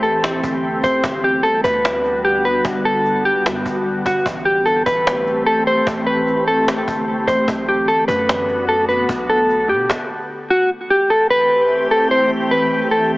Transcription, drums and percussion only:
0.03 cajon slap soft
0.24 cajon slap loud
0.43 cajon bass medium
0.84 cajon bass medium
1.04 cajon bass loud
1.44 cajon slap soft
1.64 cajon bass medium
1.85 cajon slap loud
2.04 cajon slap soft
2.44 cajon slap soft
2.65 cajon bass loud
3.05 cajon slap soft
3.46 cajon slap loud
3.66 cajon bass medium
4.06 cajon bass medium
4.19 cajon slap soft
4.26 cajon bass loud
4.32 cajon slap soft
4.39 cajon slap soft
4.66 cajon slap soft
4.86 cajon bass medium
5.07 cajon slap loud
5.27 cajon slap soft
5.67 cajon slap soft
5.87 cajon bass loud
6.27 cajon slap soft
6.47 cajon slap soft
6.68 cajon slap loud
6.88 cajon bass medium
7.28 cajon bass medium
7.48 cajon bass loud
7.88 cajon slap soft
8.08 cajon bass medium
8.29 cajon slap loud
8.49 cajon slap soft
8.89 cajon slap soft
9.09 cajon bass loud
9.49 cajon slap soft
9.90 cajon bass loud
9.90 cajon slap loud

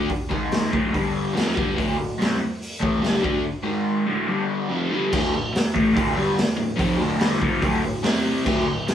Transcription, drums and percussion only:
0.09 kick loud
0.09 open hi-hat medium
0.31 kick loud
0.52 snare loud
0.52 open hi-hat medium
0.73 kick loud
0.94 kick loud
0.94 open hi-hat medium
1.37 snare loud
1.37 open hi-hat medium
1.57 kick loud
1.78 kick loud
1.78 open hi-hat medium
2.21 snare loud
2.21 open hi-hat medium
2.62 open hi-hat medium
2.83 kick loud
3.04 snare loud
3.04 open hi-hat medium
3.24 kick loud
5.12 kick loud
5.12 crash loud
5.55 snare loud
5.55 open hi-hat medium
5.76 kick medium
5.97 kick loud
5.97 open hi-hat medium
6.38 snare loud
6.38 open hi-hat medium
6.79 kick loud
6.79 open hi-hat medium
7.20 snare loud
7.20 open hi-hat medium
7.42 kick medium
7.62 kick loud
7.62 open hi-hat medium
8.04 snare loud
8.04 open hi-hat medium
8.46 kick loud
8.46 crash loud
8.88 snare loud
8.88 open hi-hat medium

